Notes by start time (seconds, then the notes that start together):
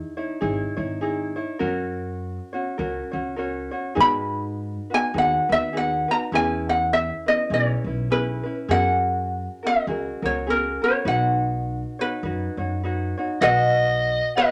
Already playing: D#4 E4 G#4 C#5
0.17 D#4 E4 C#5
0.41 G#1 D#4 E4 G#4 C#5
0.77 G#1 D#4 E4 C#5
1.01 D#4 E4 G#4 C#5
1.36 D#4 E4 C#5
1.59 F#2 C#4 F#4 A#4 C#5
2.53 C#4 F#4 C#5
2.78 C#2 C#4 F#4 A#4 C#5
3.11 C#2 C#4 F#4 C#5
3.36 C#4 F#4 A#4 C#5
3.71 C#4 F#4 C#5
3.95 G#2 D#4 F#4 G#4 B4
4.00 B5
4.90 D#4 F#4 B4
4.94 G#5
5.14 D#2 D#4 F#4 G#4 B4
5.18 F#5
5.49 D#2 D#4 F#4 B4 E5
5.73 D#4 F#4 G#4 B4
5.77 F#5
6.08 D#4 F#4 B4 A#5
6.32 E2 C#4 E4 G#4 B4 G#5
6.69 F#5
6.93 E5
7.26 C#4 E4 B4 D#5
7.50 B1 C#4 E4 G#4 B4 C#5
7.84 B1 E4 B4
7.88 C#4
8.10 C#4 E4 G#4 B4
8.43 C#4 E4 B4
8.68 F#2 C#4 F#4 G#4 A#4 F#5
9.63 C#4 F#4 A#4 D#5
9.87 C#2 C#4 F#4 G#4 A#4
10.22 C#2 C#4 F#4 A#4 C#5
10.47 C#4 F#4 G#4 A#4
10.82 C#4 F#4 A#4 C#5
11.05 B1 D#4 F#4 B4 C#5 F#5
11.99 D#4 F#4 B4 C#5
12.23 F#2 D#4 F#4 B4 C#5
12.57 F#2 D#4 F#4 C#5
12.83 D#4 F#4 B4 C#5
13.18 D#4 F#4 C#5
13.41 B1 F#4 B4 D#5 F#5
14.36 F#4 B4 D#5 F#5